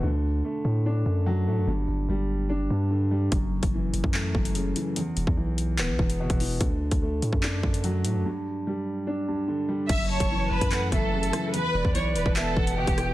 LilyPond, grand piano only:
\new Staff \with { instrumentName = "Grand piano" } { \clef bass \time 4/4 \key fis \phrygian \tempo 4 = 146 d4 a4 d'8 d8 fis8 a8 | g,4 g4 d'8 g,8 d8 g8 | fis,4 e4 a8 fis,8 cis8 e8 | e,4 e4 b8 e,8 b,8 e8 |
d4 a4 d'8 d8 fis8 a8 | g,4 g4 d'8 g,8 d8 g8 | fis,4 e4 a8 fis,8 cis8 e8 | e,4 e4 b8 e,8 b,8 e8 | }